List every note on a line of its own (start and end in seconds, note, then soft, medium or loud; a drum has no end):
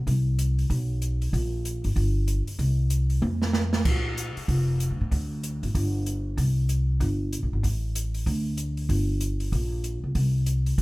0.07 0.67 C2 medium
0.07 kick soft
0.07 open hi-hat soft
0.39 closed hi-hat medium
0.59 open hi-hat soft
0.70 1.30 B1 medium
0.70 kick soft
0.70 open hi-hat soft
1.02 closed hi-hat soft
1.22 open hi-hat soft
1.33 1.81 A#1 medium
1.33 kick soft
1.33 open hi-hat soft
1.65 closed hi-hat medium
1.84 1.95 G#1 medium
1.84 open hi-hat soft
1.96 2.44 G1 medium
1.96 kick soft
1.96 open hi-hat soft
2.28 closed hi-hat medium
2.47 muted upright bass stroke soft
2.47 open hi-hat soft
2.59 3.19 C2 medium
2.59 kick soft
2.59 open hi-hat soft
2.90 closed hi-hat medium
3.10 open hi-hat soft
3.22 3.82 F2 medium
3.22 high tom soft
3.42 snare medium
3.53 snare medium
3.73 snare medium
3.85 4.33 A#1 medium
3.85 kick medium
3.85 crash medium
4.17 closed hi-hat medium
4.37 muted upright bass stroke soft
4.37 open hi-hat soft
4.48 4.87 F1 medium
4.48 kick soft
4.48 open hi-hat soft
4.80 closed hi-hat medium
4.91 5.00 D2 medium
5.01 5.11 A2 medium
5.11 5.59 D2 medium
5.11 kick soft
5.11 open hi-hat soft
5.43 closed hi-hat medium
5.63 5.74 G#1 medium
5.63 open hi-hat soft
5.75 6.35 G1 medium
5.75 kick soft
5.75 open hi-hat soft
6.06 closed hi-hat soft
6.37 6.97 C2 medium
6.37 kick soft
6.37 open hi-hat soft
6.69 closed hi-hat medium
7.00 7.39 G1 medium
7.00 kick soft
7.00 open hi-hat soft
7.33 closed hi-hat soft
7.43 7.52 A#1 medium
7.53 7.63 G#1 medium
7.63 8.23 A1 medium
7.63 kick soft
7.63 open hi-hat soft
7.95 closed hi-hat medium
8.14 open hi-hat soft
8.26 8.86 D2 medium
8.26 kick soft
8.26 open hi-hat soft
8.57 closed hi-hat medium
8.77 open hi-hat soft
8.89 9.49 G1 medium
8.89 kick soft
8.89 open hi-hat soft
9.21 closed hi-hat medium
9.40 open hi-hat soft
9.52 10.00 A#1 medium
9.52 kick soft
9.52 open hi-hat soft
9.84 closed hi-hat soft
10.04 10.15 C#2 medium
10.15 10.75 C2 medium
10.15 kick soft
10.15 open hi-hat soft
10.46 closed hi-hat medium
10.66 open hi-hat soft
10.78 10.82 B1 medium
10.78 kick soft
10.78 open hi-hat soft